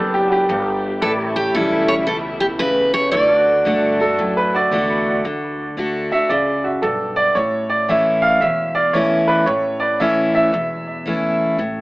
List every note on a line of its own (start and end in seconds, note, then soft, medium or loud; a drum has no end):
0.00 0.47 F#1 medium
0.00 0.47 F#2 medium
0.00 0.99 B3 medium
0.00 0.97 D4 medium
0.00 1.00 G4 medium
0.00 3.09 G4 medium
0.00 0.13 A4 medium
0.00 1.01 B4 medium
0.00 1.02 D5 medium
0.14 0.30 G4 medium
0.28 0.32 F#4 medium
0.32 0.91 G4 medium
0.49 1.00 G1 medium
0.49 1.00 G2 medium
1.01 1.53 A1 medium
1.01 2.04 A2 medium
1.01 3.11 C#3 medium
1.01 3.11 E3 medium
1.01 5.20 A3 medium
1.01 3.11 E4 medium
1.01 1.11 A4 medium
1.01 1.28 B4 medium
1.01 1.24 D5 medium
1.24 3.12 C#5 medium
1.28 3.12 A4 medium
1.36 1.53 G4 medium
1.54 2.06 B1 medium
1.54 2.06 E3 medium
1.54 2.06 G3 medium
1.54 2.06 C#4 loud
1.54 2.06 E4 medium
1.54 1.86 A4 medium
1.88 1.93 C#5 loud
2.07 2.59 C#2 medium
2.07 2.58 B2 medium
2.07 2.16 A4 medium
2.40 2.46 G4 medium
2.59 2.92 E2 medium
2.59 3.11 C#3 medium
2.59 2.93 B4 medium
2.94 3.11 C#5 loud
2.94 muted upright bass stroke soft
3.12 3.65 D2 medium
3.12 3.64 D3 medium
3.12 5.23 F#3 medium
3.12 5.22 D4 medium
3.12 3.38 E4 medium
3.12 5.23 A4 medium
3.12 3.35 C#5 medium
3.12 5.01 D5 loud
3.35 5.22 F#4 medium
3.35 5.23 D5 medium
3.65 4.17 G2 medium
3.65 3.98 D3 medium
3.65 3.99 A3 medium
3.65 3.99 D4 medium
3.65 3.99 F#4 medium
4.00 4.19 D4 soft
4.00 4.18 F#4 medium
4.00 4.35 A4 medium
4.19 4.70 F#2 medium
4.19 5.21 A2 medium
4.37 4.54 B4 medium
4.54 5.11 F#4 medium
4.54 5.14 D5 medium
4.71 5.23 E2 medium
4.71 5.23 D3 medium
4.71 5.23 A3 medium
4.71 5.23 D4 medium
4.71 5.24 F#4 medium
5.25 5.71 D2 medium
5.25 5.76 D3 medium
5.77 6.22 D2 medium
5.77 6.10 D3 medium
5.77 6.11 A3 medium
5.77 6.11 D4 medium
5.77 6.11 F#4 medium
6.12 6.31 D4 soft
6.12 6.30 F#4 medium
6.12 6.30 E5 medium
6.29 6.75 C#2 medium
6.29 6.81 C#3 medium
6.29 6.63 D5 medium
6.64 6.82 F#4 medium
6.82 7.28 B1 medium
6.82 7.34 G2 medium
6.82 7.16 A4 medium
7.16 7.35 D5 medium
7.35 8.28 A1 medium
7.35 8.38 A2 medium
7.35 7.69 C#5 medium
7.70 7.88 D5 medium
7.89 8.40 E3 medium
7.89 8.40 A3 medium
7.89 8.40 C#4 medium
7.89 8.41 E4 medium
7.89 8.22 E5 medium
8.22 8.41 F5 loud
8.40 9.34 E1 medium
8.40 9.44 E2 medium
8.40 8.74 E5 medium
8.75 8.93 D5 medium
8.93 9.45 E3 medium
8.93 9.46 A3 medium
8.93 9.46 C#4 medium
8.93 9.46 E4 loud
8.93 9.27 C#5 medium
9.28 9.46 B4 medium
9.46 10.39 A1 medium
9.46 9.80 C#5 medium
9.80 9.99 D5 medium
10.00 10.51 E3 medium
10.00 10.51 A3 medium
10.00 10.52 C#4 medium
10.00 10.52 E4 medium
10.00 10.33 E5 medium
10.34 11.55 E5 medium
10.52 11.45 E1 medium
10.52 11.55 E2 medium
11.06 11.57 E3 medium
11.06 11.57 A3 medium
11.06 11.58 C#4 medium
11.06 11.58 E4 medium
11.58 11.81 A1 medium
11.58 11.81 A2 medium